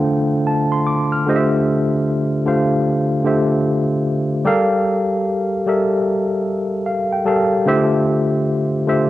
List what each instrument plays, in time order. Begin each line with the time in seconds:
Already playing: double bass E2, tine electric piano D3 A3 F4 C5 E5 F5 G5
0.47 tine electric piano A5
0.72 tine electric piano C6
0.87 tine electric piano D6
1.12 tine electric piano F6
1.27 tine electric piano D3 A3 F4 G4 C5 D#5
1.36 tine electric piano E5
2.45 tine electric piano D3 A3 F4 G4 C5 F5
3.24 tine electric piano D3 A3 F4 G4 C5 E5
4.45 tine electric piano G3 G4 A4 A#4 F5
5.67 tine electric piano G3 G4 A4 A#4 E5
6.86 tine electric piano F5
7.12 tine electric piano G5
7.25 tine electric piano G3 G4 A4 A#4 F5 A5
7.66 tine electric piano D3 A3 E4 G4 C5 E5
7.73 tine electric piano F4
8.87 tine electric piano D3 A3 F4 G4 C5 E5